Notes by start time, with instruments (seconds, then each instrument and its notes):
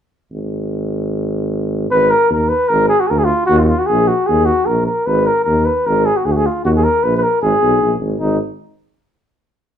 0.32 tuba G#1
1.91 tuba G#1, flugelhorn B4
2.11 flugelhorn A#4
2.29 tuba D#2, flugelhorn A#4
2.49 flugelhorn B4
2.69 tuba G#1, flugelhorn A#4
2.89 flugelhorn G#4
3.00 flugelhorn F#4
3.07 tuba D2, flugelhorn G#4 A#4
3.19 flugelhorn G#4
3.25 flugelhorn F4
3.46 tuba D#2, flugelhorn F#4
3.59 flugelhorn F4
3.64 flugelhorn F#4
3.68 flugelhorn F4
3.79 flugelhorn F#4
3.87 tuba A#1, flugelhorn G#4
4.08 flugelhorn F#4
4.27 tuba D#2, flugelhorn G#4
4.46 flugelhorn F#4
4.66 tuba A#1, flugelhorn A#4
4.86 flugelhorn A#4
5.06 tuba G#1, flugelhorn B4
5.27 flugelhorn A#4
5.45 tuba D#2, flugelhorn A#4
5.65 flugelhorn B4
5.87 tuba G#1, flugelhorn A#4
6.06 flugelhorn G#4
6.17 flugelhorn F#4
6.25 tuba D2, flugelhorn G#4
6.32 flugelhorn F#4
6.37 flugelhorn G#4
6.46 flugelhorn F4
6.65 tuba D#2, flugelhorn F#4
6.77 flugelhorn G#4
6.84 flugelhorn A#4
7.03 tuba A#1, flugelhorn B4
7.17 flugelhorn B4
7.24 flugelhorn A#4
7.42 tuba G#1, flugelhorn G#4
7.62 tuba B1
7.82 tuba A#1
8.00 tuba G#1
8.19 tuba G#1, flugelhorn D#4